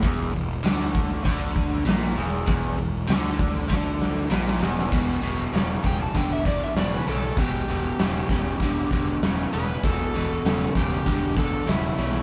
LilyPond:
<<
  \new Staff \with { instrumentName = "Electric slide guitar" } { \time 4/4 \key e \minor \tempo 4 = 98 r1 | r1 | r4. g''16 a''16 g''16 e''16 d''16 e''16 d''16 b'16 a'8 | g'2. r8 b'8 |
a'4. g'4 a'8 e'4 | }
  \new Staff \with { instrumentName = "Overdriven electric guitar" } { \clef bass \time 4/4 \key e \minor e,8 e,8 d4 d4 ais,8 e,8 | e,8 e,8 d4 d4 ais,8 e,8 | <e, b,>8 <e, b,>8 <e, cis>8 <e, cis>8 <e, d>8 <e, d>8 <e, cis>8 <e, cis>8 | <e, b,>8 <e, b,>8 <e, cis>8 <e, cis>8 <e, d>8 <e, d>8 <e, cis>8 <e, cis>8 |
<e, b,>8 <e, b,>8 <e, cis>8 <e, cis>8 <e, d>8 <e, d>8 <e, cis>8 <e, cis>8 | }
  \new Staff \with { instrumentName = "Picked electric bass" } { \clef bass \time 4/4 \key e \minor e,,8 e,,8 d,4 d,4 ais,,8 e,,8 | e,,8 e,,8 d,4 d,4 ais,,8 e,,8 | e,,8 e,,8 e,,8 e,,8 e,,4 e,,8 b,,8 | e,,8 e,,8 e,,8 e,,8 e,,8 e,,8 e,,8 e,,8 |
e,,8 e,,8 e,,8 e,,8 e,,4 e,,8 b,,8 | }
  \new DrumStaff \with { instrumentName = "Drums" } \drummode { \time 4/4 <hho bd>4 <hho sn>8 bd8 <hho bd>8 bd16 sn16 <hho sn>4 | <hho bd>4 <hho sn>16 sn16 bd8 <bd sn>8 sn8 sn16 sn16 sn16 sn16 | <cymc bd>4 <hho sn>16 sn16 bd8 <hho bd>8 bd16 sn16 <hho sn>4 | <hho bd>4 <hho sn>8 bd8 <hho bd>8 bd8 <hho sn>4 |
<hho bd>4 <hho sn>16 sn16 bd8 <hho bd>8 bd8 <hho sn>4 | }
>>